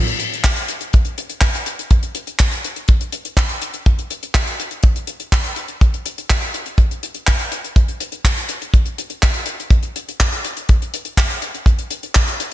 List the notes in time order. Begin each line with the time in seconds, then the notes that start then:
0.08 closed hi-hat
0.20 closed hi-hat
0.34 closed hi-hat
0.44 kick, clap, closed hi-hat
0.56 closed hi-hat
0.68 closed hi-hat
0.81 closed hi-hat
0.93 kick, closed hi-hat
1.05 closed hi-hat
1.18 closed hi-hat
1.29 closed hi-hat
1.41 kick, clap, closed hi-hat
1.55 closed hi-hat
1.66 closed hi-hat
1.79 closed hi-hat
1.91 kick, closed hi-hat
2.03 closed hi-hat
2.15 closed hi-hat
2.27 closed hi-hat
2.39 kick, clap, closed hi-hat
2.52 closed hi-hat
2.65 closed hi-hat
2.76 closed hi-hat
2.88 kick, closed hi-hat
3.01 closed hi-hat
3.12 closed hi-hat
3.25 closed hi-hat
3.37 kick, clap, closed hi-hat
3.49 closed hi-hat
3.62 closed hi-hat
3.74 closed hi-hat
3.86 kick, closed hi-hat
3.99 closed hi-hat
4.10 closed hi-hat
4.23 closed hi-hat
4.34 kick, clap, closed hi-hat
4.47 closed hi-hat
4.60 closed hi-hat
4.71 closed hi-hat
4.83 kick, closed hi-hat
4.96 closed hi-hat
5.07 closed hi-hat
5.20 closed hi-hat
5.32 kick, clap, closed hi-hat
5.44 closed hi-hat
5.56 closed hi-hat
5.68 closed hi-hat
5.81 kick, closed hi-hat
5.94 closed hi-hat
6.06 closed hi-hat
6.18 closed hi-hat
6.30 kick, clap, closed hi-hat
6.42 closed hi-hat
6.54 closed hi-hat
6.66 closed hi-hat
6.78 kick, closed hi-hat
6.91 closed hi-hat
7.03 closed hi-hat
7.14 closed hi-hat
7.27 kick, clap, closed hi-hat
7.39 closed hi-hat
7.52 closed hi-hat
7.64 closed hi-hat
7.76 kick, closed hi-hat
7.88 closed hi-hat
8.00 closed hi-hat
8.12 closed hi-hat
8.25 kick, clap, closed hi-hat
8.37 closed hi-hat
8.49 closed hi-hat
8.62 closed hi-hat
8.74 kick, closed hi-hat
8.86 closed hi-hat
8.98 closed hi-hat
9.10 closed hi-hat
9.23 kick, clap, closed hi-hat
9.34 closed hi-hat
9.46 closed hi-hat
9.60 closed hi-hat
9.71 kick, closed hi-hat
9.83 closed hi-hat
9.96 closed hi-hat
10.09 closed hi-hat
10.20 kick, clap, closed hi-hat
10.32 closed hi-hat
10.45 closed hi-hat
10.57 closed hi-hat
10.69 kick, closed hi-hat
10.82 closed hi-hat
10.94 closed hi-hat
11.05 closed hi-hat
11.17 kick, clap, closed hi-hat
11.30 closed hi-hat
11.42 closed hi-hat
11.54 closed hi-hat
11.66 kick, closed hi-hat
11.79 closed hi-hat
11.91 closed hi-hat
12.03 closed hi-hat
12.14 kick, clap, closed hi-hat
12.28 closed hi-hat
12.40 closed hi-hat